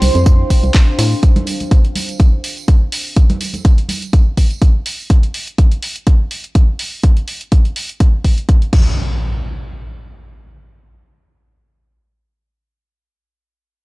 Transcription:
Already playing: D4 C5 F5 C6
0.02 C2, open hi-hat, tambourine, high conga
0.15 F2 A5, closed hi-hat, tambourine
0.26 kick, closed hi-hat, tambourine
0.50 kick, open hi-hat, tambourine
0.63 C2, closed hi-hat, tambourine
0.74 kick, snare, clap, closed hi-hat, open hi-hat, tambourine
0.99 A2, snare, open hi-hat, tambourine
1.12 tambourine
1.23 kick, closed hi-hat, tambourine
1.36 closed hi-hat, high conga
1.47 open hi-hat, tambourine
1.60 closed hi-hat, tambourine, high conga
1.71 kick, closed hi-hat, tambourine
1.85 closed hi-hat
1.95 open hi-hat, tambourine, high conga
2.09 closed hi-hat, tambourine
2.20 kick, closed hi-hat
2.44 open hi-hat, tambourine
2.57 closed hi-hat, tambourine
2.68 kick, closed hi-hat, tambourine
2.92 open hi-hat, tambourine
3.05 tambourine
3.16 kick, closed hi-hat, tambourine
3.30 closed hi-hat, high conga
3.40 open hi-hat, tambourine
3.54 closed hi-hat, tambourine, high conga
3.65 kick, closed hi-hat
3.78 closed hi-hat
3.89 open hi-hat, tambourine, high conga
4.02 closed hi-hat, tambourine
4.13 kick, closed hi-hat, tambourine
4.37 kick, open hi-hat, tambourine
4.50 closed hi-hat, tambourine
4.62 kick, closed hi-hat
4.86 open hi-hat, tambourine
4.99 tambourine
5.10 kick, closed hi-hat
5.23 closed hi-hat
5.34 open hi-hat
5.47 closed hi-hat
5.58 kick, closed hi-hat
5.72 closed hi-hat
5.82 open hi-hat
5.96 closed hi-hat
6.07 kick, closed hi-hat
6.31 open hi-hat
6.44 closed hi-hat
6.55 kick, closed hi-hat
6.79 open hi-hat
7.03 kick, closed hi-hat
7.17 closed hi-hat
7.28 open hi-hat
7.41 closed hi-hat
7.52 kick, closed hi-hat
7.65 closed hi-hat
7.76 open hi-hat
7.89 closed hi-hat
8.00 kick, closed hi-hat
8.24 kick, open hi-hat
8.38 closed hi-hat
8.49 kick, closed hi-hat
8.62 closed hi-hat
8.73 kick, crash, impact

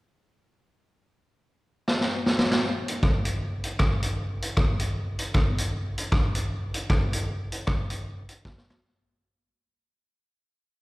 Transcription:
1.88 snare
2.01 snare
2.26 snare
2.39 snare
2.52 snare
2.88 closed hi-hat
3.03 kick, cross-stick
3.25 closed hi-hat
3.64 closed hi-hat
3.79 kick, cross-stick
4.03 closed hi-hat
4.42 closed hi-hat
4.57 kick, cross-stick
4.80 closed hi-hat
5.19 closed hi-hat
5.34 kick, cross-stick
5.58 closed hi-hat
5.98 closed hi-hat
6.12 kick, cross-stick
6.35 closed hi-hat
6.74 closed hi-hat
6.90 kick, cross-stick
7.13 closed hi-hat
7.52 closed hi-hat
7.67 kick, cross-stick
7.90 closed hi-hat
8.29 closed hi-hat
8.45 kick, snare
8.58 snare
8.70 snare

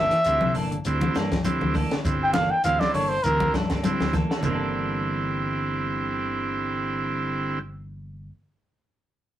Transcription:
Already playing: E3 A#3 D4 A4 E5
0.11 E3, snare, closed hi-hat
0.24 D2 D3 G3 C4 E4, closed hi-hat, high conga, shekere
0.41 C3, high conga
0.55 G1 E3 A#3 D4 A4, open hi-hat, shekere
0.71 D3, closed hi-hat
0.85 D2 D3 G3 C4 E4, closed hi-hat, high conga, shekere
1.01 E3, high conga
1.15 G2 E3 A#3 D4 A4, snare, closed hi-hat, shekere
1.32 G1 F3, kick, snare, closed hi-hat
1.45 D3 G3 C4 E4, closed hi-hat, high conga, shekere
1.61 D2 E3, high conga
1.74 E3 A#3 D4 A4, kick, open hi-hat, high conga, shekere
1.91 D3, muted fingered electric bass stroke, snare, closed hi-hat
2.04 G1 D3 G3 C4 E4, kick, closed hi-hat, high conga, shekere
2.23 G5
2.33 E3 A#3 D4 A4 F5, snare, closed hi-hat, high conga, shekere
2.51 G5
2.64 D2 D3 E3 G3 C4 E4 F5, closed hi-hat, high conga, shekere
2.80 D5, snare, high conga
2.94 G1 D3 E3 A#3 D4 A4 C#5, open hi-hat, shekere
3.09 C5
3.23 D2 D3 E3 G3 C4 E4 A#4, closed hi-hat, high conga, shekere
3.40 kick, high conga
3.54 G2 E3 F3 D4 A4, muted clean electric guitar stroke, kick, snare, closed hi-hat, shekere
3.70 G1 A#3 D4 A4, kick, snare, closed hi-hat
3.83 D3 G3 C4 E4, closed hi-hat, high conga, shekere
4.00 D2, snare, high conga
4.13 E3 A#3 A4, kick, snare, closed hi-hat, high conga, shekere
4.30 A#3 D4 A4, muted fingered electric bass stroke, snare
4.38 E3
4.43 G1 G2 D3 G3 A#3 C4 E4, low conga, shekere
4.50 D4
4.55 A4

